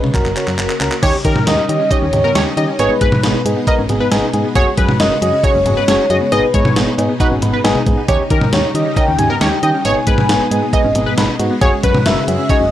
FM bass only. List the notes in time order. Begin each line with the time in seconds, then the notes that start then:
0.03 C#3
0.14 F#1
0.25 F#1
0.48 F#2
0.58 F#1
0.80 C#2
1.03 D#2
1.25 D#3
1.47 D#2
1.69 D#3
2.02 D#2
2.13 D#2
2.35 D#2
2.57 D#3
2.79 G#1
3.01 G#2
3.23 G#1
3.45 G#2
3.78 G#1
3.89 G#1
4.12 G#1
4.34 G#2
4.55 F#1
4.78 F#2
5.00 F#1
5.22 F#2
5.55 F#1
5.66 F#1
5.88 F#1
6.10 F#2
6.32 G#1
6.54 G#2
6.76 G#1
6.98 G#2
7.31 G#1
7.42 G#1
7.64 G#1
7.87 G#2
8.08 D#2
8.31 D#3
8.53 D#2
8.75 D#3
9.08 D#2
9.19 D#2
9.41 D#2
9.63 D#3
9.85 G#1
10.07 G#2
10.29 G#1
10.51 G#2
10.84 G#1
10.95 G#1
11.18 G#1
11.39 G#2
11.62 F#1
11.84 F#2
12.06 F#1
12.28 F#2
12.61 F#1